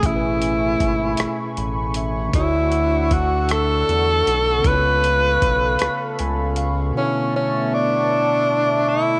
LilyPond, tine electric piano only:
\new Staff \with { instrumentName = "Tine electric piano" } { \time 6/8 \key b \dorian \tempo 4. = 52 << { r2 b''8 e''8 | r2. | r2 gis''8 eis''8 | r2. | } \\ { <b, a cis' gis' a' b'>2. | <d a e' fis' cis''>2. | <cis b e' eis' a' cis''>2. | <b, d b e' a' cis''>2. | } >> }